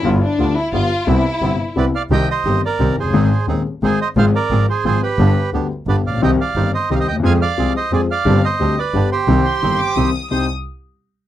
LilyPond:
<<
  \new Staff \with { instrumentName = "Violin section" } { \time 3/4 \key c \major \tempo 4 = 176 r8 d'4 e'8 f'4 | e'2 r4 | \key c \minor r2. | r2. |
r2. | r2. | r2. | r2. |
r2. | r8 c'''4 d'''8 ees'''4 | ees'''8 r2 r8 | }
  \new Staff \with { instrumentName = "Bandoneon" } { \time 3/4 \key c \major << { r2. | r2 d''8 f''8 | \key c \minor g''8 ees''4 d''4 c''8~ | c''4 r4 c''8 ees''8 |
f''8 d''4 c''8 c''8 b'8~ | b'4 r4 d''8 f''8 | g''8 f''4 ees''8 ees''32 f''32 ees''16 g''8 | aes''8 f''4 ees''8 d''8 f''8~ |
f''8 ees''4 d''4 c''8~ | c''2~ c''8 r8 | c''8 r2 r8 | } \\ { r2. | r2 b'8 d''8 | ees''8 c''4 bes'4 aes'8~ | aes'4 r4 aes'8 c''8 |
c''8 bes'4 aes'8 aes'8 g'8~ | g'4 r4 b'8 d''8 | ees''8 d''4 c''8 c''16 c''16 ees''8 | f''8 d''4 c''8 aes'8 d''8~ |
d''8 c''4 b'4 g'8~ | g'2~ g'8 r8 | r2. | } >> }
  \new Staff \with { instrumentName = "Bandoneon" } { \time 3/4 \key c \major <g b f'>8 r8 <g b f'>8 r8 <g b f'>8 r8 | <b c' e'>8 r8 <b c' e'>8 r8 <b c' e'>8 r8 | \key c \minor <c' ees' g'>8 r8 <c' ees' g'>8 r8 <c' ees' g'>8 r8 | <c' ees' aes'>8 r8 <c' ees' aes'>8 r8 <c' ees' aes'>8 r8 |
<c' f' aes'>8 r8 <c' f' aes'>8 r8 <c' f' aes'>8 r8 | <b d' g'>8 r8 <b d' g'>8 r8 <b d' g'>8 r8 | <c' ees' g'>8 r8 <c' ees' g'>8 r8 <c' ees' g'>8 r8 | <c' f' aes'>8 r8 <c' f' aes'>8 r8 <c' f' aes'>8 r8 |
<c' d' g'>8 r8 <c' d' g'>8 r8 <b d' g'>8 r8 | <c' ees' g'>8 r8 <c' ees' g'>8 r8 <c' ees' g'>8 r8 | <c' ees' g'>8 r2 r8 | }
  \new Staff \with { instrumentName = "Grand piano" } { \clef bass \time 3/4 \key c \major <g,, g, d g b f'>8 r8 <d, d g b f'>8 r8 <g,, g, d g b f'>8 r8 | <c, c g b e'>8 r8 <g,, g, c g b e'>8 r8 <c, c g b e'>8 r8 | \key c \minor <c, c ees g c' g'>8 r8 <g,, g, ees g c' g'>8 r8 <c, c ees g c' g'>8 r32 f,,32 fis,,32 g,,32 | <aes,, aes, ees aes c' aes'>8 r8 <ees,, ees, ees aes c' aes'>8 r8 <aes,, aes, ees aes c' aes'>8 r8 |
<aes,, aes, f aes c' aes'>8 r8 <aes,, aes, f aes c' aes'>8 r8 <aes,, aes, f aes c' aes'>8 r8 | <g,, g, d g b g'>8 r8 <d, d g b g'>8 r8 <g,, g, d g b g'>8 r32 a,,32 bes,,32 b,,32 | <c, c ees g c' g'>8 r8 <g,, g, ees g c' g'>8 r8 <c, c ees g c' g'>8 r32 d,32 ees,32 e,32 | <f, f aes c' aes'>8 r8 <c, c f aes c' aes'>8 r8 <f, f aes c' aes'>8 r8 |
<g,, g, d g c' g'>8 r8 <d, d g c' g'>8 r8 <g,, g, d g b g'>8 r8 | <c, c ees g c' g'>8 r8 <g,, g, ees g c' g'>8 r8 <c, c ees g c' g'>8 r8 | <c, c' ees' g'>8 r2 r8 | }
  \new Staff \with { instrumentName = "Double bass" } { \clef bass \time 3/4 \key c \major g,,8 r8 d,8 r8 g,,8 r8 | c,8 r8 g,,8 r8 c,8 r8 | \key c \minor c,8 r8 g,,8 r8 c,8 fis,,8 | aes,,8 r8 ees,8 r8 aes,,8 r8 |
aes,,8 r8 aes,,8 r8 aes,,8 r8 | g,,8 r8 d,8 r8 g,,8 bes,,8 | c,8 r8 g,,8 r8 c,8 ees,8 | f,8 r8 c,8 r8 f,8 r8 |
g,,8 r8 d,8 r8 g,,8 r8 | c,8 r8 g,,8 r8 c,8 r8 | c,8 r2 r8 | }
>>